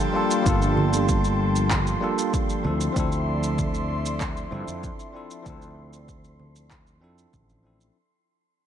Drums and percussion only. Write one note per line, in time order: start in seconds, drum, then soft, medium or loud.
0.00 shaker soft
0.31 shaker medium
0.46 kick loud
0.46 shaker medium
0.62 shaker soft
0.77 low conga medium
0.93 shaker medium
1.09 kick medium
1.09 shaker medium
1.24 shaker soft
1.56 shaker medium
1.71 kick loud
1.71 clap medium
1.71 low conga medium
1.71 shaker medium
1.87 shaker soft
2.18 shaker medium
2.34 kick loud
2.34 shaker medium
2.50 shaker soft
2.65 low conga medium
2.81 shaker medium
2.96 kick loud
2.96 shaker soft
3.12 shaker soft
3.43 shaker medium
3.58 kick loud
3.58 low conga medium
3.58 shaker medium
3.74 shaker soft
4.06 shaker medium
4.21 kick loud
4.21 clap medium
4.21 shaker medium
4.37 shaker soft
4.52 low conga medium
4.68 shaker medium
4.83 kick loud
4.83 shaker medium
5.00 shaker soft
5.31 shaker medium
5.46 kick loud
5.46 low conga medium
5.46 shaker soft
5.62 shaker soft
5.93 shaker medium
6.09 kick medium
6.09 shaker soft
6.24 shaker soft
6.40 low conga medium
6.56 shaker medium
6.71 kick medium
6.71 clap medium
6.71 shaker medium
6.87 shaker soft
7.18 shaker medium
7.33 kick loud
7.33 low conga medium
7.33 shaker soft
7.50 shaker soft
7.81 shaker medium